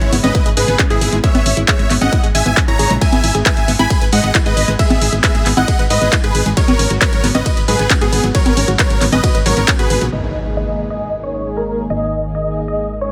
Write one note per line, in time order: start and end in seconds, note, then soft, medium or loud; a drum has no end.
0.00 0.09 G#1 medium
0.00 0.17 C#3 medium
0.00 0.17 G#3 medium
0.00 0.05 G#3 medium
0.00 0.17 B3 medium
0.00 0.16 E4 medium
0.00 0.17 E4 medium
0.00 0.16 C#5 loud
0.00 closed hi-hat medium
0.12 0.20 G#1 loud
0.12 0.18 B3 loud
0.12 open hi-hat loud
0.23 0.31 G#1 medium
0.23 0.39 C#3 medium
0.23 0.39 G#3 medium
0.23 0.39 B3 medium
0.23 0.32 C#4 loud
0.23 0.39 E4 medium
0.23 0.49 B4 medium
0.23 0.49 D#5 medium
0.23 0.49 D#5 loud
0.23 closed hi-hat medium
0.23 high conga medium
0.35 0.41 E4 loud
0.35 kick loud
0.35 closed hi-hat medium
0.46 0.54 G#1 medium
0.46 0.55 G#4 loud
0.46 closed hi-hat medium
0.57 0.65 G#2 loud
0.57 0.73 C#3 medium
0.57 0.63 G#3 loud
0.57 0.73 G#3 medium
0.57 0.73 B3 medium
0.57 0.73 E4 medium
0.57 0.82 G#4 medium
0.57 0.82 B4 medium
0.57 0.82 B4 loud
0.57 open hi-hat loud
0.68 0.76 G#1 loud
0.68 0.77 B3 medium
0.68 closed hi-hat medium
0.79 0.95 C#3 medium
0.79 0.95 G#3 medium
0.79 0.95 B3 medium
0.79 0.83 C#4 loud
0.79 0.95 E4 medium
0.79 kick loud
0.79 clap loud
0.79 closed hi-hat medium
0.90 0.98 G#2 medium
0.90 1.16 E4 medium
0.90 0.94 E4 medium
0.90 1.16 G#4 loud
0.90 closed hi-hat medium
1.01 1.09 G#1 loud
1.01 1.17 C#3 medium
1.01 1.17 G#3 medium
1.01 1.17 B3 medium
1.01 1.17 E4 medium
1.01 1.07 G#4 loud
1.01 open hi-hat loud
1.12 1.20 G#1 medium
1.12 1.18 G#3 medium
1.12 closed hi-hat medium
1.24 1.39 C#3 medium
1.24 1.29 G#3 loud
1.24 1.39 G#3 medium
1.24 1.39 B3 medium
1.24 1.39 E4 medium
1.24 1.57 C#5 medium
1.24 1.57 E5 loud
1.24 kick loud
1.24 closed hi-hat medium
1.35 1.42 G#1 medium
1.35 1.43 B3 loud
1.35 closed hi-hat medium
1.35 high conga medium
1.46 1.54 G#1 loud
1.46 1.49 C#4 medium
1.46 open hi-hat loud
1.57 1.65 G#1 medium
1.57 1.73 C#3 medium
1.57 1.73 G#3 medium
1.57 1.73 B3 medium
1.57 1.73 E4 loud
1.57 1.63 E4 medium
1.57 closed hi-hat soft
1.68 1.72 G#4 loud
1.68 1.93 C#5 medium
1.68 1.93 E5 medium
1.68 kick loud
1.68 clap loud
1.68 closed hi-hat medium
1.79 1.87 G#1 medium
1.79 1.95 C#3 medium
1.79 1.83 G#3 medium
1.79 1.95 G#3 medium
1.79 1.95 B3 medium
1.79 1.95 E4 medium
1.79 closed hi-hat soft
1.90 1.98 G#1 loud
1.90 1.96 B3 loud
1.90 clap soft
1.90 open hi-hat loud
2.01 2.09 G#1 medium
2.01 2.17 C#3 medium
2.01 2.17 G#3 medium
2.01 2.17 B3 medium
2.01 2.10 C#4 loud
2.01 2.17 E4 loud
2.01 2.27 D#5 medium
2.01 2.27 F#5 loud
2.01 2.27 F#5 medium
2.01 closed hi-hat soft
2.01 high conga medium
2.12 2.18 E4 loud
2.12 kick loud
2.12 closed hi-hat medium
2.23 2.31 G#1 medium
2.23 2.32 G#4 loud
2.23 closed hi-hat medium
2.35 2.42 G#1 loud
2.35 2.50 C#3 medium
2.35 2.40 G#3 loud
2.35 2.50 G#3 medium
2.35 2.50 B3 medium
2.35 2.50 E4 medium
2.35 2.60 E5 medium
2.35 2.60 G#5 loud
2.35 2.60 G#5 medium
2.35 open hi-hat loud
2.46 2.54 G#1 loud
2.46 2.54 B3 medium
2.46 closed hi-hat soft
2.57 2.73 C#3 medium
2.57 2.73 G#3 loud
2.57 2.73 B3 medium
2.57 2.60 C#4 loud
2.57 2.73 E4 loud
2.57 kick loud
2.57 clap loud
2.57 closed hi-hat medium
2.68 2.76 G#1 medium
2.68 2.71 E4 medium
2.68 2.93 C#5 medium
2.68 2.93 A#5 loud
2.68 closed hi-hat medium
2.79 2.87 G#1 loud
2.79 2.95 C#3 medium
2.79 2.95 G#3 medium
2.79 2.95 B3 medium
2.79 2.95 E4 medium
2.79 2.85 G#4 loud
2.79 open hi-hat loud
2.90 2.98 A#1 medium
2.90 2.96 G#3 medium
2.90 closed hi-hat medium
3.01 3.17 E3 medium
3.01 3.07 G#3 loud
3.01 3.17 G#3 medium
3.01 3.17 B3 medium
3.01 3.17 G#4 loud
3.01 3.35 E5 medium
3.01 3.35 G#5 loud
3.01 kick loud
3.01 closed hi-hat medium
3.01 ride medium
3.12 3.20 G#1 medium
3.12 3.21 B3 loud
3.12 closed hi-hat medium
3.12 high conga medium
3.24 3.31 G#1 loud
3.24 3.27 E4 medium
3.24 open hi-hat loud
3.35 3.42 G#1 medium
3.35 3.50 E3 medium
3.35 3.50 G#3 loud
3.35 3.50 B3 medium
3.35 3.50 G#4 medium
3.35 3.41 G#4 medium
3.35 closed hi-hat medium
3.46 3.49 B4 loud
3.46 3.71 E5 medium
3.46 3.71 G#5 medium
3.46 kick loud
3.46 clap loud
3.46 closed hi-hat medium
3.46 ride medium
3.57 3.65 G#1 medium
3.57 3.73 E3 medium
3.57 3.73 G#3 medium
3.57 3.60 G#3 medium
3.57 3.72 B3 medium
3.57 3.72 G#4 medium
3.57 closed hi-hat medium
3.68 3.76 G#1 loud
3.68 3.74 B3 loud
3.68 open hi-hat loud
3.79 3.87 G#1 medium
3.79 3.95 E3 medium
3.79 3.95 G#3 medium
3.79 3.95 B3 medium
3.79 3.88 E4 loud
3.79 3.95 G#4 medium
3.79 4.05 G#5 medium
3.79 4.05 B5 loud
3.79 closed hi-hat soft
3.79 high conga medium
3.90 3.96 G#4 loud
3.90 kick loud
3.90 closed hi-hat medium
3.90 ride medium
4.01 4.09 G#1 medium
4.01 4.10 B4 loud
4.01 closed hi-hat medium
4.12 4.20 G#2 loud
4.12 4.28 E3 medium
4.12 4.18 G#3 loud
4.12 4.28 G#3 medium
4.12 4.28 B3 medium
4.12 4.28 G#4 medium
4.12 4.38 D#5 medium
4.12 4.38 F#5 loud
4.12 open hi-hat loud
4.24 4.31 G#1 medium
4.24 4.32 B3 medium
4.24 closed hi-hat medium
4.35 4.50 E3 medium
4.35 4.50 G#3 medium
4.35 4.50 B3 medium
4.35 4.38 E4 loud
4.35 4.50 G#4 medium
4.35 kick loud
4.35 clap loud
4.35 closed hi-hat medium
4.35 ride medium
4.46 4.54 G#2 medium
4.46 4.49 G#4 medium
4.46 4.71 B4 medium
4.46 4.71 D#5 loud
4.46 4.71 D#5 medium
4.46 closed hi-hat medium
4.57 4.65 G#1 loud
4.57 4.73 E3 medium
4.57 4.73 G#3 medium
4.57 4.73 B3 medium
4.57 4.72 G#4 medium
4.57 4.63 B4 loud
4.57 open hi-hat loud
4.68 4.76 G#1 loud
4.68 4.74 G#3 medium
4.68 closed hi-hat medium
4.79 4.95 E3 medium
4.79 4.85 G#3 loud
4.79 4.95 G#3 medium
4.79 4.95 B3 medium
4.79 5.13 G#4 medium
4.79 4.95 G#4 medium
4.79 5.13 E5 loud
4.79 kick loud
4.79 closed hi-hat medium
4.79 ride medium
4.90 4.98 G#1 medium
4.90 4.99 B3 loud
4.90 closed hi-hat medium
4.90 high conga medium
5.01 5.09 G#1 loud
5.01 5.05 E4 medium
5.01 open hi-hat loud
5.12 5.20 G#1 medium
5.12 5.28 E3 medium
5.12 5.28 G#3 medium
5.12 5.28 B3 medium
5.12 5.18 G#4 medium
5.12 5.28 G#4 medium
5.12 closed hi-hat medium
5.24 5.49 G#4 medium
5.24 5.27 B4 loud
5.24 5.49 E5 loud
5.24 kick loud
5.24 clap loud
5.24 closed hi-hat medium
5.24 ride medium
5.35 5.42 G#1 medium
5.35 5.50 E3 medium
5.35 5.38 G#3 medium
5.35 5.50 G#3 medium
5.35 5.50 B3 medium
5.35 5.50 G#4 medium
5.35 closed hi-hat medium
5.46 5.54 G#1 loud
5.46 5.52 B3 loud
5.46 clap soft
5.46 open hi-hat loud
5.57 5.65 G#1 loud
5.57 5.72 E3 medium
5.57 5.73 G#3 medium
5.57 5.73 B3 medium
5.57 5.66 E4 loud
5.57 5.73 G#4 medium
5.57 5.82 D#5 medium
5.57 5.82 F#5 loud
5.57 closed hi-hat medium
5.57 high conga medium
5.68 5.74 G#4 loud
5.68 kick loud
5.68 closed hi-hat medium
5.68 ride medium
5.79 5.87 G#1 medium
5.79 5.88 B4 loud
5.79 closed hi-hat medium
5.90 5.98 G#2 loud
5.90 6.06 E3 medium
5.90 6.06 G#3 medium
5.90 5.96 G#3 loud
5.90 6.06 B3 medium
5.90 6.06 G#4 medium
5.90 6.16 B4 medium
5.90 6.16 D#5 loud
5.90 open hi-hat loud
6.01 6.09 G#1 medium
6.01 6.10 B3 medium
6.01 closed hi-hat medium
6.13 6.28 E3 medium
6.13 6.28 G#3 medium
6.13 6.28 B3 medium
6.13 6.16 E4 loud
6.13 6.28 G#4 medium
6.13 kick loud
6.13 clap loud
6.13 closed hi-hat medium
6.13 ride medium
6.24 6.31 G#2 medium
6.24 6.49 G#4 medium
6.24 6.27 G#4 medium
6.24 6.49 B4 loud
6.24 closed hi-hat medium
6.35 6.42 G#1 loud
6.35 6.50 E3 medium
6.35 6.50 G#3 medium
6.35 6.50 B3 medium
6.35 6.50 G#4 medium
6.35 6.41 B4 loud
6.35 open hi-hat loud
6.46 6.54 G#1 medium
6.46 6.52 G#3 medium
6.46 closed hi-hat medium
6.57 6.73 C#3 medium
6.57 6.63 F#3 loud
6.57 6.73 F#3 medium
6.57 6.73 B3 loud
6.57 6.73 F#4 loud
6.57 6.91 A#4 medium
6.57 6.91 C#5 loud
6.57 kick loud
6.57 closed hi-hat medium
6.57 ride medium
6.68 6.76 G#1 medium
6.68 6.77 B3 loud
6.68 closed hi-hat medium
6.68 high conga medium
6.79 6.87 G#1 loud
6.79 6.83 C#4 medium
6.79 open hi-hat loud
6.90 6.98 G#1 loud
6.90 7.06 C#3 medium
6.90 7.06 F#3 loud
6.90 7.06 B3 medium
6.90 7.06 F#4 medium
6.90 6.96 F#4 medium
6.90 closed hi-hat medium
7.01 7.27 A#4 medium
7.01 7.05 B4 loud
7.01 7.27 C#5 loud
7.01 7.27 C#5 medium
7.01 kick loud
7.01 clap loud
7.01 closed hi-hat medium
7.01 ride medium
7.12 7.20 G#1 medium
7.12 7.28 C#3 medium
7.12 7.28 F#3 medium
7.12 7.16 F#3 medium
7.12 7.28 B3 medium
7.12 7.28 F#4 medium
7.12 closed hi-hat medium
7.24 7.31 G#1 loud
7.24 7.29 B3 loud
7.24 open hi-hat loud
7.35 7.42 G#1 loud
7.35 7.50 C#3 medium
7.35 7.50 F#3 medium
7.35 7.50 B3 medium
7.35 7.43 C#4 loud
7.35 7.50 F#4 medium
7.35 7.60 B4 medium
7.35 7.60 D#5 loud
7.35 closed hi-hat medium
7.35 high conga medium
7.46 7.52 F#4 loud
7.46 kick loud
7.46 closed hi-hat medium
7.46 ride medium
7.57 7.65 G#1 medium
7.57 7.66 B4 loud
7.57 closed hi-hat medium
7.68 7.76 G#2 loud
7.68 7.84 C#3 medium
7.68 7.84 F#3 medium
7.68 7.74 F#3 loud
7.68 7.84 B3 medium
7.68 7.84 F#4 medium
7.68 7.93 G#4 medium
7.68 7.93 B4 medium
7.68 7.93 B4 loud
7.68 open hi-hat loud
7.79 7.87 G#1 loud
7.79 7.88 B3 medium
7.79 closed hi-hat medium
7.90 8.06 C#3 medium
7.90 8.06 F#3 loud
7.90 8.06 B3 loud
7.90 7.94 C#4 loud
7.90 8.06 F#4 medium
7.90 kick loud
7.90 clap loud
7.90 closed hi-hat medium
7.90 ride medium
8.01 8.09 G#2 medium
8.01 8.27 B3 medium
8.01 8.05 F#4 medium
8.01 8.27 G#4 loud
8.01 closed hi-hat medium
8.12 8.20 G#1 loud
8.12 8.28 C#3 medium
8.12 8.28 F#3 medium
8.12 8.28 B3 medium
8.12 8.28 F#4 medium
8.12 8.18 B4 loud
8.12 open hi-hat loud
8.24 8.31 G#1 medium
8.24 8.29 F#3 medium
8.24 closed hi-hat medium
8.35 8.50 C#3 loud
8.35 8.41 F#3 loud
8.35 8.50 F#3 medium
8.35 8.50 B3 medium
8.35 8.50 F#4 medium
8.35 8.69 A#4 medium
8.35 8.68 C#5 loud
8.35 8.69 C#5 loud
8.35 kick loud
8.35 closed hi-hat medium
8.35 ride medium
8.46 8.53 G#1 medium
8.46 8.54 B3 loud
8.46 closed hi-hat medium
8.46 high conga medium
8.57 8.65 G#1 loud
8.57 8.60 C#4 medium
8.57 open hi-hat loud
8.68 8.76 G#1 loud
8.68 8.84 C#3 loud
8.68 8.84 F#3 medium
8.68 8.84 B3 medium
8.68 8.74 F#4 medium
8.68 8.84 F#4 medium
8.68 closed hi-hat medium
8.79 9.05 A#4 medium
8.79 8.83 B4 loud
8.79 9.04 C#5 loud
8.79 9.05 C#5 medium
8.79 kick loud
8.79 clap loud
8.79 closed hi-hat medium
8.79 ride medium
8.90 8.98 G#1 medium
8.90 9.06 C#3 medium
8.90 8.94 F#3 medium
8.90 9.06 F#3 medium
8.90 9.06 B3 medium
8.90 9.06 F#4 medium
8.90 closed hi-hat medium
9.01 9.09 G#1 loud
9.01 9.07 B3 loud
9.01 clap soft
9.01 open hi-hat loud
9.12 9.20 G#1 loud
9.12 9.28 C#3 medium
9.12 9.28 F#3 medium
9.12 9.28 B3 medium
9.12 9.21 C#4 loud
9.12 9.28 F#4 medium
9.12 9.38 B4 medium
9.12 9.38 D#5 loud
9.12 closed hi-hat medium
9.12 high conga medium
9.23 9.29 F#4 loud
9.23 kick loud
9.23 closed hi-hat medium
9.23 ride medium
9.35 9.42 G#1 medium
9.35 9.43 B4 loud
9.35 closed hi-hat medium
9.46 9.54 G#1 loud
9.46 9.62 C#3 medium
9.46 9.52 F#3 loud
9.46 9.61 F#3 medium
9.46 9.62 B3 medium
9.46 9.61 F#4 medium
9.46 9.71 A#4 medium
9.46 9.71 C#5 medium
9.46 9.71 C#5 loud
9.46 open hi-hat loud
9.57 9.65 G#1 loud
9.57 9.66 B3 medium
9.57 closed hi-hat medium
9.68 9.84 C#3 loud
9.68 9.84 F#3 medium
9.68 9.84 B3 medium
9.68 9.71 C#4 loud
9.68 9.84 F#4 medium
9.68 kick loud
9.68 clap loud
9.68 closed hi-hat medium
9.68 ride medium
9.79 9.87 G#1 medium
9.79 9.83 F#4 medium
9.79 10.05 G#4 medium
9.79 10.04 B4 loud
9.79 10.04 B4 medium
9.79 closed hi-hat medium
9.90 9.98 G#1 loud
9.90 10.06 C#3 loud
9.90 10.06 F#3 medium
9.90 10.06 B3 medium
9.90 10.06 F#4 medium
9.90 9.96 B4 loud
9.90 open hi-hat loud
10.01 10.09 A#1 loud
10.01 10.07 F#3 medium
10.01 closed hi-hat medium
10.12 11.88 G#1 medium
10.12 10.28 D#3 medium
10.12 10.28 G#3 medium
10.12 10.28 A#3 medium
10.12 10.28 G#4 medium
10.12 10.46 D#5 medium
10.12 crash medium
10.12 impact medium
10.46 10.61 D#3 medium
10.46 10.61 G#3 medium
10.46 10.61 A#3 medium
10.46 10.61 G#4 medium
10.57 10.82 D#5 medium
10.68 10.84 D#3 medium
10.68 10.83 G#3 medium
10.68 10.83 A#3 medium
10.68 10.84 G#4 medium
10.90 11.06 D#3 medium
10.90 11.06 G#3 medium
10.90 11.06 A#3 medium
10.90 11.06 G#4 medium
10.90 11.16 D#5 loud
10.90 11.16 D#5 medium
11.23 11.39 D#3 medium
11.23 11.39 G#3 medium
11.23 11.39 A#3 medium
11.23 11.39 G#4 medium
11.23 11.49 C#5 medium
11.46 11.61 D#3 medium
11.46 11.62 G#3 medium
11.46 11.61 A#3 medium
11.46 11.61 G#4 medium
11.57 11.82 A#4 medium
11.68 11.84 D#3 medium
11.68 11.84 G#3 medium
11.68 11.84 A#3 medium
11.68 11.84 G#4 medium
11.90 13.12 G#1 medium
11.90 12.06 D#3 medium
11.90 12.06 G#3 medium
11.90 12.06 A#3 medium
11.90 12.06 G#4 medium
11.90 12.24 D#5 loud
12.24 12.39 D#3 medium
12.24 12.39 G#3 medium
12.24 12.39 A#3 medium
12.24 12.39 G#4 medium
12.35 12.60 D#5 medium
12.46 12.62 D#3 medium
12.46 12.62 G#3 medium
12.46 12.61 A#3 medium
12.46 12.62 G#4 medium
12.68 12.84 D#3 medium
12.68 12.84 G#3 medium
12.68 12.84 A#3 medium
12.68 12.84 G#4 medium
12.68 12.93 D#5 loud
12.68 12.93 D#5 medium
13.01 13.12 D#3 medium
13.01 13.12 G#3 medium
13.01 13.12 A#3 medium
13.01 13.12 G#4 medium
13.01 13.12 C#5 medium
13.01 13.12 C#5 loud